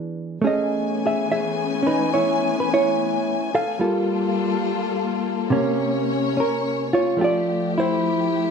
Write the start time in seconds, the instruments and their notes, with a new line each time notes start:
Already playing: hollow-body jazz guitar E3 B3 D4 G#4
0.42 string section E3 A3 B3 C#4, hollow-body jazz guitar A3 C#4 G#4
0.46 hollow-body jazz guitar D#5, string section G#5
1.06 hollow-body jazz guitar G#4 E5
1.32 hollow-body jazz guitar G#4 E5
1.83 hollow-body jazz guitar C#4 D#4
1.87 hollow-body jazz guitar B4
2.14 hollow-body jazz guitar E4 C#5
2.60 hollow-body jazz guitar B4
2.73 hollow-body jazz guitar E4 C#5
3.55 hollow-body jazz guitar A4 F5
3.79 hollow-body jazz guitar G3 A#3 F4 A4, string section G3 A#3 F4 A4
5.49 hollow-body jazz guitar C3 A#3 C#4, string section C#4 C#5
6.37 hollow-body jazz guitar C#4 A#4
6.93 hollow-body jazz guitar F4 C#5
7.17 hollow-body jazz guitar F3 A3, string section F3 A3 G4
7.21 hollow-body jazz guitar F4 G4 D5
7.78 hollow-body jazz guitar E4 C5